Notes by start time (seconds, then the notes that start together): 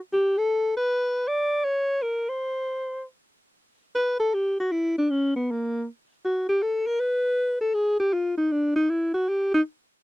0.13 G4
0.38 A4
0.77 B4
1.28 D5
1.64 C#5
2.02 A#4
2.29 C5
3.95 B4
4.20 A4
4.34 G4
4.60 F#4
4.72 E4
4.98 D4
5.10 C#4
5.36 B3
5.51 A#3
6.25 F#4
6.49 G4
6.62 A4
6.87 A#4
7.00 B4
7.61 A4
7.74 G#4
8.00 G4
8.13 F4
8.37 D#4
8.52 D4
8.76 D#4
8.90 E4
9.14 F#4
9.29 G4
9.54 D#4